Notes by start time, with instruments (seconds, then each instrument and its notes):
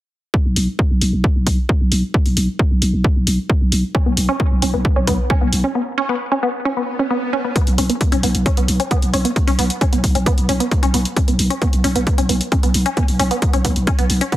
0.34 kick
0.45 808-style bass B1
0.56 808-style bass B1, open hi-hat
0.79 kick
0.90 808-style bass B1
1.01 808-style bass B1, open hi-hat
1.13 808-style bass B1
1.24 kick
1.35 808-style bass B1
1.47 808-style bass B1, kick, open hi-hat
1.69 kick
1.81 808-style bass B1
1.92 808-style bass B1, open hi-hat
2.14 kick
2.26 808-style bass B1, open hi-hat
2.37 808-style bass B1, open hi-hat
2.59 kick
2.71 808-style bass B1
2.82 808-style bass B1, open hi-hat
2.93 808-style bass B1
3.04 kick
3.16 808-style bass B1
3.27 808-style bass B1, open hi-hat
3.50 kick
3.61 808-style bass B1
3.72 808-style bass B1, open hi-hat
3.95 synth arpeggio sound C#4, kick
4.06 808-style bass B1, synth arpeggio sound B3
4.17 808-style bass B1, open hi-hat
4.29 synth arpeggio sound C#4
4.40 synth arpeggio sound B3, kick
4.51 808-style bass B1
4.62 808-style bass B1, synth arpeggio sound C#4, open hi-hat
4.74 808-style bass B1, synth arpeggio sound B3
4.85 kick
4.96 808-style bass B1, synth arpeggio sound C#4
5.07 808-style bass B1, synth arpeggio sound B3, kick, open hi-hat
5.30 synth arpeggio sound C#4, kick
5.41 808-style bass B1, synth arpeggio sound B3
5.53 808-style bass B1, open hi-hat
5.64 synth arpeggio sound C#4
5.75 synth arpeggio sound B3
5.98 synth arpeggio sound C#4
6.09 synth arpeggio sound B3
6.32 synth arpeggio sound C#4
6.43 synth arpeggio sound B3
6.65 synth arpeggio sound C#4, swell
6.77 synth arpeggio sound B3
6.99 synth arpeggio sound C#4
7.11 synth arpeggio sound B3
7.33 synth arpeggio sound C#4
7.44 synth arpeggio sound B3
7.56 synth arpeggio sound B3, kick, closed hi-hat
7.67 808-style bass B1, closed hi-hat
7.78 808-style bass B1, synth arpeggio sound C#4, open hi-hat
7.90 synth arpeggio sound B3, closed hi-hat
8.01 kick, closed hi-hat
8.12 808-style bass B1, synth arpeggio sound C#4, closed hi-hat
8.23 808-style bass B1, synth arpeggio sound B3, open hi-hat
8.35 808-style bass B1, closed hi-hat
8.46 synth arpeggio sound C#4, kick, closed hi-hat
8.57 808-style bass B1, synth arpeggio sound B3, closed hi-hat
8.68 808-style bass B1, open hi-hat
8.80 synth arpeggio sound C#4, closed hi-hat
8.91 synth arpeggio sound B3, kick, closed hi-hat
9.02 808-style bass B1, closed hi-hat
9.13 808-style bass B1, synth arpeggio sound C#4, open hi-hat
9.25 synth arpeggio sound B3, closed hi-hat
9.36 kick, closed hi-hat
9.47 808-style bass B1, synth arpeggio sound C#4, open hi-hat
9.59 808-style bass B1, synth arpeggio sound B3, open hi-hat
9.70 closed hi-hat
9.81 synth arpeggio sound C#4, kick, closed hi-hat
9.93 808-style bass B1, synth arpeggio sound B3, closed hi-hat
10.04 808-style bass B1, kick, open hi-hat
10.15 808-style bass B1, synth arpeggio sound C#4, closed hi-hat
10.26 synth arpeggio sound B3, kick, closed hi-hat
10.38 808-style bass B1, closed hi-hat
10.49 808-style bass B1, synth arpeggio sound C#4, open hi-hat
10.60 synth arpeggio sound B3, closed hi-hat
10.71 kick, closed hi-hat
10.83 808-style bass B1, synth arpeggio sound C#4, closed hi-hat
10.94 808-style bass B1, synth arpeggio sound B3, open hi-hat
11.05 closed hi-hat
11.16 synth arpeggio sound C#4, kick, closed hi-hat
11.28 808-style bass B1, synth arpeggio sound B3, closed hi-hat
11.39 808-style bass B1, open hi-hat
11.50 synth arpeggio sound C#4, closed hi-hat
11.62 synth arpeggio sound B3, kick, closed hi-hat
11.73 808-style bass B1, closed hi-hat
11.84 808-style bass B1, synth arpeggio sound C#4, open hi-hat
11.95 808-style bass B1, synth arpeggio sound B3, closed hi-hat
12.07 kick, closed hi-hat
12.18 808-style bass B1, synth arpeggio sound C#4, closed hi-hat
12.29 808-style bass B1, synth arpeggio sound B3, open hi-hat
12.41 closed hi-hat
12.52 synth arpeggio sound C#4, kick, closed hi-hat
12.63 808-style bass B1, synth arpeggio sound B3, closed hi-hat
12.74 808-style bass B1, open hi-hat
12.86 synth arpeggio sound C#4, closed hi-hat
12.97 synth arpeggio sound B3, kick, closed hi-hat
13.08 808-style bass B1, open hi-hat
13.20 808-style bass B1, synth arpeggio sound C#4, open hi-hat
13.31 synth arpeggio sound B3, closed hi-hat
13.42 kick, closed hi-hat
13.53 808-style bass B1, synth arpeggio sound C#4, closed hi-hat
13.65 808-style bass B1, synth arpeggio sound B3, kick, open hi-hat
13.76 808-style bass B1, closed hi-hat
13.87 synth arpeggio sound C#4, kick, closed hi-hat
13.99 808-style bass B1, synth arpeggio sound B3, closed hi-hat
14.10 808-style bass B1, open hi-hat
14.21 synth arpeggio sound C#4, closed hi-hat
14.32 synth arpeggio sound B3, kick, closed hi-hat